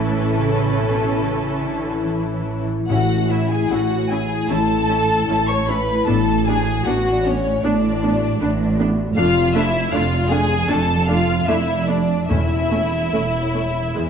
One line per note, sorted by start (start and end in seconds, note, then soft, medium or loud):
0.00 2.65 A1 soft
0.00 0.27 A2 soft
0.00 2.87 A2 soft
0.00 2.65 E3 soft
0.00 1.49 C#4 soft
0.00 2.69 C#4 soft
0.00 2.65 E4 soft
0.00 2.47 A4 medium
0.00 2.69 A4 medium
0.08 0.93 E4 soft
0.36 0.76 C#3 soft
0.36 2.04 A4 soft
0.66 2.32 C#5 soft
0.79 1.22 B2 soft
0.94 1.76 E4 soft
1.21 1.64 C#3 soft
1.21 2.93 E3 soft
1.51 3.15 C#4 soft
1.63 2.05 D3 soft
1.78 2.60 E4 soft
2.05 2.89 E3 soft
2.05 3.69 A4 soft
2.33 3.96 C#5 soft
2.61 3.42 E4 soft
2.88 3.62 A1 medium
2.88 3.61 A2 medium
2.88 6.07 A2 medium
2.88 4.07 A2 medium
2.88 2.97 C#4 soft
2.88 2.97 E4 soft
2.88 3.28 F#4 medium
2.88 3.27 F#5 medium
3.16 4.76 C#4 soft
3.30 3.38 C#4 soft
3.30 3.38 E4 soft
3.30 3.51 E4 soft
3.30 3.51 E5 medium
3.44 4.23 E4 soft
3.51 3.71 G#4 medium
3.51 3.71 G#5 medium
3.70 4.41 A1 medium
3.70 4.41 A2 soft
3.70 3.79 C#4 soft
3.70 3.79 E4 soft
3.70 4.11 F#4 medium
3.70 5.28 A4 soft
3.70 4.11 F#5 medium
3.97 5.54 C#5 soft
4.10 4.18 C#4 soft
4.10 4.18 E4 soft
4.10 4.51 G#4 medium
4.10 4.50 G#5 medium
4.24 5.02 E4 soft
4.49 5.20 A1 soft
4.49 5.19 A2 medium
4.49 6.11 E3 soft
4.49 4.57 C#4 soft
4.49 4.57 E4 soft
4.49 5.49 A4 medium
4.49 5.47 A5 medium
4.77 6.11 C#4 soft
4.89 4.97 C#4 soft
4.89 4.97 E4 soft
5.04 5.81 E4 soft
5.28 5.98 A1 soft
5.28 5.98 A2 medium
5.28 5.37 C#4 soft
5.28 5.37 E4 soft
5.28 9.19 A4 soft
5.49 5.68 C#5 medium
5.49 5.68 C#6 medium
5.55 6.11 C#5 soft
5.67 5.76 C#4 soft
5.67 5.75 E4 soft
5.67 6.08 B4 medium
5.67 6.08 B5 medium
5.82 6.11 E4 soft
6.07 6.77 A1 medium
6.07 6.77 A2 medium
6.07 7.62 A2 medium
6.07 6.15 B3 soft
6.07 6.15 D4 soft
6.07 6.47 A4 medium
6.07 6.46 A5 medium
6.35 7.88 D4 soft
6.47 6.56 B3 soft
6.47 6.55 D4 soft
6.47 6.86 G#4 medium
6.47 6.87 G#5 medium
6.61 7.37 F#4 soft
6.85 7.54 A1 medium
6.85 7.54 A2 medium
6.85 6.94 B3 medium
6.85 6.94 D4 soft
6.85 7.25 F#4 medium
6.85 8.39 B4 medium
6.85 7.24 F#5 medium
7.12 8.64 D5 soft
7.24 7.34 B3 soft
7.24 7.63 C#4 medium
7.24 7.33 D4 soft
7.24 7.63 C#5 medium
7.38 8.14 F#4 soft
7.63 8.32 A1 medium
7.63 8.31 A2 medium
7.63 9.20 A2 soft
7.63 7.72 B3 medium
7.63 8.76 D4 medium
7.63 7.72 D4 medium
7.63 8.78 D5 medium
7.89 9.42 D4 soft
8.03 8.11 B3 soft
8.03 8.11 D4 medium
8.15 8.90 F#4 soft
8.41 9.08 A1 medium
8.41 9.08 A2 medium
8.41 8.49 B3 medium
8.41 8.49 D4 medium
8.41 9.20 B4 medium
8.66 9.92 D5 medium
8.79 8.87 B3 medium
8.79 8.87 D4 medium
8.91 9.20 F#4 soft
9.16 9.85 F1 medium
9.16 10.68 F2 medium
9.16 9.85 F2 medium
9.16 9.24 A3 medium
9.16 9.24 D4 medium
9.16 9.53 F4 medium
9.16 9.53 F5 medium
9.43 10.42 D4 medium
9.55 9.63 A3 medium
9.55 9.63 D4 medium
9.55 9.94 E4 medium
9.55 9.92 E5 medium
9.68 10.17 A4 soft
9.92 10.61 F1 medium
9.92 10.61 F2 medium
9.92 10.01 A3 medium
9.92 10.01 D4 medium
9.92 10.32 F4 medium
9.92 11.47 D5 medium
9.92 10.31 F5 medium
10.18 11.20 A4 medium
10.30 10.39 A3 medium
10.30 10.38 D4 medium
10.30 10.70 G#4 medium
10.30 10.70 G#5 medium
10.44 12.01 D4 soft
10.69 11.40 F1 medium
10.69 12.34 F2 medium
10.69 11.39 F2 medium
10.69 10.77 A3 medium
10.69 10.77 D4 medium
10.69 11.09 A4 medium
10.69 11.10 A5 medium
10.96 12.34 F3 soft
11.08 11.17 A3 soft
11.08 11.16 D4 medium
11.08 11.48 F4 medium
11.08 11.48 F5 medium
11.22 11.74 A4 medium
11.48 12.21 F1 medium
11.48 12.21 F2 medium
11.48 11.56 A3 medium
11.48 11.56 D4 soft
11.48 11.90 E4 medium
11.48 12.34 D5 soft
11.48 11.89 E5 medium
11.75 12.85 A4 medium
11.88 11.96 A3 soft
11.88 12.30 D4 medium
11.88 11.96 D4 soft
11.88 12.30 D5 medium
12.02 12.34 D4 soft
12.29 13.05 E1 medium
12.29 13.97 E2 medium
12.29 13.04 E2 medium
12.29 13.52 E2 medium
12.29 12.37 A3 soft
12.29 12.37 C#4 soft
12.29 14.10 E4 medium
12.29 14.10 E5 medium
12.58 14.00 C#4 soft
12.70 12.79 A3 soft
12.70 12.78 C#4 soft
12.86 13.69 A4 soft
13.13 13.87 E1 medium
13.13 13.87 E2 medium
13.13 13.21 A3 soft
13.13 13.21 C#4 soft
13.13 14.10 E5 soft
13.42 14.01 C#5 soft
13.54 13.62 A3 soft
13.54 13.62 C#4 soft
13.70 14.01 A4 soft
13.96 14.10 E1 medium
13.96 14.10 E2 medium
13.96 14.10 E2 soft
13.96 14.04 G#3 soft
13.96 14.04 B3 soft